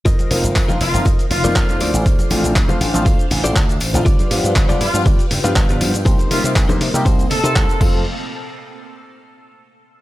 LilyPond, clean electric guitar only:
\new Staff \with { instrumentName = "Clean electric guitar" } { \time 4/4 \key f \mixolydian \tempo 4 = 120 <f' bes' c'' ees''>8 r8. <f' bes' c'' f''>16 r8 <f' bes' c'' ees''>8 r16 <f' bes' c'' d''>8. <f' a' c'' d''>8~ | <f' a' c'' d''>4 r16 <f' a' c'' f''>16 r8 <f' a' c'' f''>8 r16 <f' a' c'' d''>8. r8 | <f' g' b' d''>8 r8. <f' g' b' d''>16 r8 <f' g' b' d''>8 r16 <f' g' b' f''>8. r8 | <ees' g' bes' c''>8 r8. <ees' g' bes' c''>16 r8 <ees' g' bes' c''>8 r16 <ees' g' bes' c''>8. <f' a' c''>8 |
r1 | }